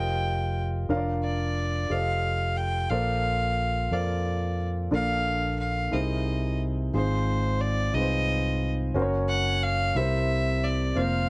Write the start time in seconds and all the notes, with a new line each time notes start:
Already playing: F1 F4 G4 A#4 C5 D#5 G5
0.89 F1 D4 F4 A#4 C#5 F5
0.97 D5
1.24 D5
1.89 F1 F4 G4 A4 C5 D#5 F5
2.57 G5
2.90 A#1 A#2 F4 A4 A#4 C5 D5 F5
3.91 F2 F4 A4 A#4 C5 D5 F5
4.91 A#1 A#2 D4 F4 A4 A#4 D5 F5
5.59 F5
5.91 C2 C3 D#4 E4 G#4 A#4 C5 D#5
6.93 G#1 G#2 C4 D#4 F4 G#4 C5
7.61 D5
7.94 C2 C4 D#4 F4 G#4 B4 D#5
8.01 C5
8.94 F#1 C#4 F#4 A#4 C5
9.02 C#5
9.29 F#5
9.63 F5
9.95 C2 C3 C4 E4 G4 A#4 C5 E5
10.64 D5
10.95 F1 A#3 C4 F4 A#4 C5 F5